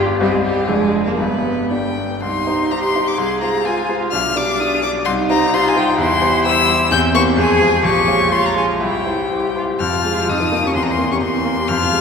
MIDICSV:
0, 0, Header, 1, 4, 480
1, 0, Start_track
1, 0, Tempo, 476948
1, 203, Time_signature, 2, 2, 24, 8
1, 684, Tempo, 504202
1, 2604, Tempo, 472813
1, 5484, Tempo, 460476
1, 7884, Tempo, 489396
1, 10284, Tempo, 469484
1, 12049, End_track
2, 0, Start_track
2, 0, Title_t, "Violin"
2, 0, Program_c, 0, 40
2, 205, Note_on_c, 0, 67, 80
2, 311, Note_on_c, 0, 68, 69
2, 326, Note_off_c, 0, 67, 0
2, 430, Note_off_c, 0, 68, 0
2, 436, Note_on_c, 0, 67, 75
2, 682, Note_on_c, 0, 68, 74
2, 696, Note_off_c, 0, 67, 0
2, 1028, Note_off_c, 0, 68, 0
2, 1033, Note_on_c, 0, 70, 61
2, 1146, Note_off_c, 0, 70, 0
2, 1151, Note_on_c, 0, 71, 63
2, 1641, Note_off_c, 0, 71, 0
2, 1667, Note_on_c, 0, 79, 73
2, 2117, Note_off_c, 0, 79, 0
2, 2156, Note_on_c, 0, 84, 86
2, 2619, Note_on_c, 0, 82, 89
2, 2635, Note_off_c, 0, 84, 0
2, 2732, Note_off_c, 0, 82, 0
2, 2740, Note_on_c, 0, 84, 81
2, 2986, Note_on_c, 0, 86, 78
2, 3002, Note_off_c, 0, 84, 0
2, 3092, Note_on_c, 0, 84, 85
2, 3107, Note_off_c, 0, 86, 0
2, 3319, Note_off_c, 0, 84, 0
2, 3325, Note_on_c, 0, 82, 81
2, 3572, Note_on_c, 0, 80, 75
2, 3587, Note_off_c, 0, 82, 0
2, 3812, Note_off_c, 0, 80, 0
2, 4042, Note_on_c, 0, 89, 98
2, 4297, Note_on_c, 0, 86, 100
2, 4312, Note_off_c, 0, 89, 0
2, 4531, Note_on_c, 0, 87, 100
2, 4546, Note_off_c, 0, 86, 0
2, 4757, Note_off_c, 0, 87, 0
2, 4763, Note_on_c, 0, 86, 96
2, 4844, Note_off_c, 0, 86, 0
2, 4995, Note_on_c, 0, 84, 100
2, 5076, Note_off_c, 0, 84, 0
2, 5250, Note_on_c, 0, 82, 102
2, 5489, Note_on_c, 0, 84, 102
2, 5504, Note_off_c, 0, 82, 0
2, 5635, Note_on_c, 0, 80, 98
2, 5650, Note_off_c, 0, 84, 0
2, 5738, Note_on_c, 0, 79, 88
2, 5753, Note_off_c, 0, 80, 0
2, 5964, Note_off_c, 0, 79, 0
2, 5970, Note_on_c, 0, 84, 112
2, 6432, Note_off_c, 0, 84, 0
2, 6438, Note_on_c, 0, 88, 116
2, 6910, Note_off_c, 0, 88, 0
2, 6925, Note_on_c, 0, 91, 109
2, 7009, Note_off_c, 0, 91, 0
2, 7163, Note_on_c, 0, 85, 115
2, 7246, Note_off_c, 0, 85, 0
2, 7419, Note_on_c, 0, 80, 99
2, 7884, Note_off_c, 0, 80, 0
2, 7893, Note_on_c, 0, 85, 102
2, 8353, Note_on_c, 0, 84, 101
2, 8368, Note_off_c, 0, 85, 0
2, 8497, Note_on_c, 0, 82, 75
2, 8511, Note_off_c, 0, 84, 0
2, 8602, Note_off_c, 0, 82, 0
2, 8606, Note_on_c, 0, 80, 73
2, 8684, Note_off_c, 0, 80, 0
2, 8841, Note_on_c, 0, 79, 70
2, 9553, Note_off_c, 0, 79, 0
2, 9808, Note_on_c, 0, 89, 89
2, 10292, Note_on_c, 0, 87, 88
2, 10307, Note_off_c, 0, 89, 0
2, 10674, Note_on_c, 0, 85, 76
2, 10689, Note_off_c, 0, 87, 0
2, 10754, Note_off_c, 0, 85, 0
2, 10761, Note_on_c, 0, 84, 81
2, 10840, Note_on_c, 0, 82, 73
2, 10855, Note_off_c, 0, 84, 0
2, 10923, Note_on_c, 0, 84, 85
2, 10938, Note_off_c, 0, 82, 0
2, 11129, Note_off_c, 0, 84, 0
2, 11135, Note_on_c, 0, 85, 76
2, 11181, Note_off_c, 0, 85, 0
2, 11234, Note_on_c, 0, 84, 86
2, 11710, Note_on_c, 0, 89, 101
2, 11726, Note_off_c, 0, 84, 0
2, 12049, Note_off_c, 0, 89, 0
2, 12049, End_track
3, 0, Start_track
3, 0, Title_t, "Cello"
3, 0, Program_c, 1, 42
3, 210, Note_on_c, 1, 55, 91
3, 344, Note_on_c, 1, 56, 81
3, 359, Note_off_c, 1, 55, 0
3, 453, Note_off_c, 1, 56, 0
3, 459, Note_on_c, 1, 55, 87
3, 688, Note_off_c, 1, 55, 0
3, 703, Note_on_c, 1, 56, 89
3, 1058, Note_on_c, 1, 58, 77
3, 1072, Note_off_c, 1, 56, 0
3, 1168, Note_on_c, 1, 59, 75
3, 1183, Note_off_c, 1, 58, 0
3, 1909, Note_off_c, 1, 59, 0
3, 2158, Note_on_c, 1, 63, 61
3, 2607, Note_on_c, 1, 67, 73
3, 2623, Note_off_c, 1, 63, 0
3, 3087, Note_off_c, 1, 67, 0
3, 3092, Note_on_c, 1, 68, 67
3, 3564, Note_on_c, 1, 65, 75
3, 3579, Note_off_c, 1, 68, 0
3, 4054, Note_on_c, 1, 62, 74
3, 4069, Note_off_c, 1, 65, 0
3, 5010, Note_off_c, 1, 62, 0
3, 5016, Note_on_c, 1, 63, 85
3, 5486, Note_on_c, 1, 65, 93
3, 5502, Note_off_c, 1, 63, 0
3, 5949, Note_off_c, 1, 65, 0
3, 5955, Note_on_c, 1, 64, 90
3, 6915, Note_on_c, 1, 60, 87
3, 6930, Note_off_c, 1, 64, 0
3, 7389, Note_on_c, 1, 68, 106
3, 7404, Note_off_c, 1, 60, 0
3, 7872, Note_off_c, 1, 68, 0
3, 7879, Note_on_c, 1, 67, 84
3, 8340, Note_off_c, 1, 67, 0
3, 8353, Note_on_c, 1, 65, 77
3, 8820, Note_off_c, 1, 65, 0
3, 8830, Note_on_c, 1, 64, 53
3, 9259, Note_off_c, 1, 64, 0
3, 9326, Note_on_c, 1, 67, 66
3, 9549, Note_off_c, 1, 67, 0
3, 9582, Note_on_c, 1, 65, 55
3, 9661, Note_off_c, 1, 65, 0
3, 9811, Note_on_c, 1, 65, 77
3, 10288, Note_on_c, 1, 63, 78
3, 10303, Note_off_c, 1, 65, 0
3, 10663, Note_on_c, 1, 61, 71
3, 10679, Note_off_c, 1, 63, 0
3, 10779, Note_on_c, 1, 60, 73
3, 10794, Note_off_c, 1, 61, 0
3, 11141, Note_on_c, 1, 61, 63
3, 11157, Note_off_c, 1, 60, 0
3, 11254, Note_off_c, 1, 61, 0
3, 11266, Note_on_c, 1, 60, 79
3, 11726, Note_off_c, 1, 60, 0
3, 11738, Note_on_c, 1, 65, 79
3, 12049, Note_off_c, 1, 65, 0
3, 12049, End_track
4, 0, Start_track
4, 0, Title_t, "Grand piano"
4, 0, Program_c, 2, 0
4, 0, Control_c, 2, 64, 127
4, 0, Note_on_c, 2, 31, 78
4, 0, Note_on_c, 2, 43, 82
4, 0, Note_on_c, 2, 59, 52
4, 0, Note_on_c, 2, 67, 57
4, 0, Note_on_c, 2, 74, 58
4, 161, Note_off_c, 2, 59, 0
4, 165, Note_off_c, 2, 67, 0
4, 167, Note_off_c, 2, 74, 0
4, 173, Note_off_c, 2, 31, 0
4, 174, Note_off_c, 2, 43, 0
4, 203, Note_on_c, 2, 60, 59
4, 205, Note_on_c, 2, 36, 77
4, 205, Note_on_c, 2, 48, 69
4, 212, Note_on_c, 2, 67, 60
4, 218, Note_on_c, 2, 75, 54
4, 225, Control_c, 2, 64, 0
4, 368, Control_c, 2, 64, 127
4, 644, Note_off_c, 2, 60, 0
4, 649, Note_off_c, 2, 67, 0
4, 651, Note_off_c, 2, 75, 0
4, 671, Note_off_c, 2, 36, 0
4, 671, Note_off_c, 2, 48, 0
4, 684, Note_on_c, 2, 41, 67
4, 685, Note_on_c, 2, 29, 56
4, 686, Note_on_c, 2, 56, 46
4, 690, Note_on_c, 2, 62, 47
4, 699, Note_on_c, 2, 74, 46
4, 703, Control_c, 2, 64, 0
4, 853, Control_c, 2, 64, 127
4, 1125, Note_off_c, 2, 56, 0
4, 1126, Note_off_c, 2, 62, 0
4, 1131, Note_off_c, 2, 74, 0
4, 1147, Note_off_c, 2, 41, 0
4, 1148, Note_off_c, 2, 29, 0
4, 1156, Note_on_c, 2, 43, 58
4, 1157, Note_on_c, 2, 31, 54
4, 1182, Control_c, 2, 64, 0
4, 1334, Control_c, 2, 64, 127
4, 1654, Note_on_c, 2, 55, 37
4, 1661, Note_on_c, 2, 62, 40
4, 1663, Note_on_c, 2, 74, 43
4, 2107, Note_off_c, 2, 55, 0
4, 2110, Note_off_c, 2, 62, 0
4, 2111, Note_off_c, 2, 74, 0
4, 2113, Note_off_c, 2, 43, 0
4, 2114, Note_off_c, 2, 31, 0
4, 2147, Note_on_c, 2, 36, 61
4, 2164, Control_c, 2, 64, 0
4, 2328, Control_c, 2, 64, 127
4, 2370, Note_off_c, 2, 36, 0
4, 2381, Note_on_c, 2, 55, 44
4, 2387, Note_on_c, 2, 63, 51
4, 2387, Note_on_c, 2, 72, 47
4, 2584, Note_off_c, 2, 55, 0
4, 2586, Note_off_c, 2, 63, 0
4, 2587, Note_off_c, 2, 72, 0
4, 2620, Note_on_c, 2, 55, 45
4, 2626, Note_on_c, 2, 63, 44
4, 2626, Note_on_c, 2, 72, 46
4, 2829, Note_off_c, 2, 55, 0
4, 2832, Note_off_c, 2, 63, 0
4, 2832, Note_off_c, 2, 72, 0
4, 2859, Note_on_c, 2, 55, 44
4, 2867, Note_on_c, 2, 63, 46
4, 2873, Note_on_c, 2, 72, 51
4, 3069, Note_off_c, 2, 55, 0
4, 3073, Note_off_c, 2, 63, 0
4, 3076, Note_off_c, 2, 72, 0
4, 3092, Note_on_c, 2, 36, 68
4, 3105, Control_c, 2, 64, 0
4, 3296, Control_c, 2, 64, 127
4, 3321, Note_off_c, 2, 36, 0
4, 3332, Note_on_c, 2, 56, 48
4, 3334, Note_on_c, 2, 65, 49
4, 3338, Note_on_c, 2, 72, 53
4, 3547, Note_off_c, 2, 56, 0
4, 3548, Note_off_c, 2, 65, 0
4, 3550, Note_off_c, 2, 72, 0
4, 3574, Note_on_c, 2, 56, 46
4, 3576, Note_on_c, 2, 65, 47
4, 3585, Note_on_c, 2, 72, 55
4, 3789, Note_off_c, 2, 56, 0
4, 3791, Note_off_c, 2, 65, 0
4, 3795, Note_off_c, 2, 72, 0
4, 3812, Note_on_c, 2, 56, 46
4, 3818, Note_on_c, 2, 65, 48
4, 3822, Note_on_c, 2, 72, 55
4, 4028, Note_off_c, 2, 56, 0
4, 4031, Note_off_c, 2, 65, 0
4, 4034, Note_off_c, 2, 72, 0
4, 4055, Note_on_c, 2, 35, 71
4, 4071, Control_c, 2, 64, 0
4, 4251, Control_c, 2, 64, 127
4, 4286, Note_off_c, 2, 35, 0
4, 4287, Note_on_c, 2, 55, 54
4, 4290, Note_on_c, 2, 62, 57
4, 4296, Note_on_c, 2, 74, 57
4, 4504, Note_off_c, 2, 55, 0
4, 4505, Note_off_c, 2, 62, 0
4, 4509, Note_off_c, 2, 74, 0
4, 4534, Note_on_c, 2, 55, 50
4, 4538, Note_on_c, 2, 62, 52
4, 4541, Note_on_c, 2, 74, 55
4, 4747, Note_off_c, 2, 55, 0
4, 4750, Note_off_c, 2, 62, 0
4, 4751, Note_off_c, 2, 74, 0
4, 4768, Note_on_c, 2, 55, 55
4, 4770, Note_on_c, 2, 62, 53
4, 4776, Note_on_c, 2, 74, 58
4, 4983, Note_off_c, 2, 55, 0
4, 4985, Note_off_c, 2, 62, 0
4, 4988, Note_off_c, 2, 74, 0
4, 5004, Note_on_c, 2, 36, 89
4, 5027, Control_c, 2, 64, 0
4, 5176, Control_c, 2, 64, 127
4, 5237, Note_off_c, 2, 36, 0
4, 5240, Note_on_c, 2, 55, 63
4, 5245, Note_on_c, 2, 63, 60
4, 5246, Note_on_c, 2, 72, 70
4, 5457, Note_off_c, 2, 55, 0
4, 5459, Note_off_c, 2, 63, 0
4, 5460, Note_off_c, 2, 72, 0
4, 5483, Note_on_c, 2, 55, 57
4, 5486, Note_on_c, 2, 63, 62
4, 5487, Note_on_c, 2, 72, 66
4, 5700, Note_off_c, 2, 55, 0
4, 5701, Note_off_c, 2, 63, 0
4, 5702, Note_off_c, 2, 72, 0
4, 5717, Note_on_c, 2, 55, 61
4, 5721, Note_on_c, 2, 63, 59
4, 5723, Note_on_c, 2, 72, 73
4, 5934, Note_off_c, 2, 55, 0
4, 5936, Note_off_c, 2, 63, 0
4, 5937, Note_off_c, 2, 72, 0
4, 5951, Note_on_c, 2, 40, 93
4, 5980, Control_c, 2, 64, 0
4, 6133, Control_c, 2, 64, 127
4, 6188, Note_off_c, 2, 40, 0
4, 6190, Note_on_c, 2, 55, 61
4, 6190, Note_on_c, 2, 67, 67
4, 6197, Note_on_c, 2, 72, 73
4, 6412, Note_off_c, 2, 67, 0
4, 6413, Note_off_c, 2, 55, 0
4, 6416, Note_off_c, 2, 72, 0
4, 6437, Note_on_c, 2, 55, 58
4, 6442, Note_on_c, 2, 67, 65
4, 6445, Note_on_c, 2, 72, 69
4, 6656, Note_off_c, 2, 55, 0
4, 6659, Note_off_c, 2, 67, 0
4, 6661, Note_off_c, 2, 72, 0
4, 6674, Note_on_c, 2, 55, 65
4, 6679, Note_on_c, 2, 67, 62
4, 6686, Note_on_c, 2, 72, 71
4, 6893, Note_off_c, 2, 55, 0
4, 6896, Note_off_c, 2, 67, 0
4, 6899, Note_off_c, 2, 72, 0
4, 6923, Note_on_c, 2, 40, 96
4, 6941, Control_c, 2, 64, 0
4, 7081, Control_c, 2, 64, 127
4, 7154, Note_off_c, 2, 40, 0
4, 7161, Note_on_c, 2, 58, 67
4, 7165, Note_on_c, 2, 67, 68
4, 7172, Note_on_c, 2, 72, 77
4, 7378, Note_off_c, 2, 58, 0
4, 7380, Note_off_c, 2, 67, 0
4, 7384, Note_off_c, 2, 72, 0
4, 7397, Note_on_c, 2, 41, 83
4, 7420, Control_c, 2, 64, 0
4, 7587, Control_c, 2, 64, 127
4, 7633, Note_off_c, 2, 41, 0
4, 7643, Note_on_c, 2, 56, 61
4, 7643, Note_on_c, 2, 65, 60
4, 7647, Note_on_c, 2, 72, 71
4, 7861, Note_off_c, 2, 56, 0
4, 7861, Note_off_c, 2, 65, 0
4, 7863, Note_off_c, 2, 72, 0
4, 7880, Note_on_c, 2, 34, 83
4, 7901, Control_c, 2, 64, 0
4, 8069, Control_c, 2, 64, 127
4, 8108, Note_off_c, 2, 34, 0
4, 8115, Note_on_c, 2, 56, 56
4, 8117, Note_on_c, 2, 65, 53
4, 8122, Note_on_c, 2, 73, 60
4, 8328, Note_off_c, 2, 56, 0
4, 8329, Note_off_c, 2, 65, 0
4, 8332, Note_off_c, 2, 73, 0
4, 8353, Note_on_c, 2, 56, 49
4, 8360, Note_on_c, 2, 65, 49
4, 8362, Note_on_c, 2, 73, 53
4, 8566, Note_off_c, 2, 56, 0
4, 8569, Note_off_c, 2, 65, 0
4, 8570, Note_off_c, 2, 73, 0
4, 8589, Note_on_c, 2, 56, 47
4, 8590, Note_on_c, 2, 65, 46
4, 8595, Note_on_c, 2, 73, 50
4, 8806, Note_off_c, 2, 56, 0
4, 8806, Note_off_c, 2, 65, 0
4, 8809, Note_off_c, 2, 73, 0
4, 8833, Note_on_c, 2, 36, 63
4, 8850, Control_c, 2, 64, 0
4, 8992, Control_c, 2, 64, 127
4, 9068, Note_off_c, 2, 36, 0
4, 9075, Note_on_c, 2, 55, 45
4, 9082, Note_on_c, 2, 64, 40
4, 9086, Note_on_c, 2, 72, 47
4, 9293, Note_off_c, 2, 55, 0
4, 9297, Note_off_c, 2, 64, 0
4, 9299, Note_off_c, 2, 72, 0
4, 9324, Note_on_c, 2, 55, 39
4, 9326, Note_on_c, 2, 64, 41
4, 9333, Note_on_c, 2, 72, 41
4, 9542, Note_off_c, 2, 55, 0
4, 9542, Note_off_c, 2, 64, 0
4, 9546, Note_off_c, 2, 72, 0
4, 9567, Note_on_c, 2, 55, 37
4, 9570, Note_on_c, 2, 64, 40
4, 9572, Note_on_c, 2, 72, 43
4, 9785, Note_off_c, 2, 55, 0
4, 9787, Note_off_c, 2, 64, 0
4, 9788, Note_off_c, 2, 72, 0
4, 9810, Note_on_c, 2, 41, 77
4, 9827, Control_c, 2, 64, 0
4, 9931, Note_on_c, 2, 48, 52
4, 9974, Control_c, 2, 64, 127
4, 10049, Note_on_c, 2, 56, 59
4, 10120, Note_off_c, 2, 48, 0
4, 10172, Note_on_c, 2, 65, 53
4, 10237, Note_off_c, 2, 56, 0
4, 10270, Note_off_c, 2, 41, 0
4, 10286, Note_off_c, 2, 65, 0
4, 10288, Note_on_c, 2, 41, 68
4, 10302, Control_c, 2, 64, 0
4, 10404, Note_on_c, 2, 53, 50
4, 10492, Control_c, 2, 64, 127
4, 10524, Note_on_c, 2, 58, 57
4, 10598, Note_off_c, 2, 53, 0
4, 10649, Note_on_c, 2, 67, 59
4, 10718, Note_off_c, 2, 58, 0
4, 10755, Note_off_c, 2, 41, 0
4, 10760, Note_on_c, 2, 40, 69
4, 10768, Note_off_c, 2, 67, 0
4, 10788, Control_c, 2, 64, 0
4, 10883, Note_on_c, 2, 52, 50
4, 10953, Control_c, 2, 64, 127
4, 11001, Note_on_c, 2, 58, 54
4, 11076, Note_off_c, 2, 52, 0
4, 11122, Note_on_c, 2, 67, 52
4, 11195, Note_off_c, 2, 58, 0
4, 11217, Note_off_c, 2, 40, 0
4, 11233, Note_on_c, 2, 40, 58
4, 11316, Note_off_c, 2, 67, 0
4, 11353, Note_on_c, 2, 52, 50
4, 11476, Note_on_c, 2, 58, 54
4, 11552, Note_off_c, 2, 52, 0
4, 11602, Note_on_c, 2, 67, 58
4, 11673, Note_off_c, 2, 58, 0
4, 11704, Note_off_c, 2, 40, 0
4, 11721, Note_on_c, 2, 41, 80
4, 11724, Note_off_c, 2, 67, 0
4, 11745, Control_c, 2, 64, 0
4, 11849, Note_on_c, 2, 48, 55
4, 11924, Control_c, 2, 64, 127
4, 11957, Note_on_c, 2, 56, 56
4, 12038, Note_off_c, 2, 48, 0
4, 12049, Note_off_c, 2, 41, 0
4, 12049, Note_off_c, 2, 56, 0
4, 12049, End_track
0, 0, End_of_file